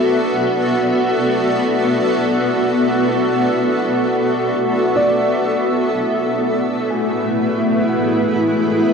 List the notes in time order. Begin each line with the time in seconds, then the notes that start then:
Already playing: B3 F#4 A4 D5 E5
4.96 D5
5.91 A3 E5
5.96 B3 F#4
6.17 B4
6.30 E4
6.62 G#4
6.91 G#5
7.89 F#5
8.87 E5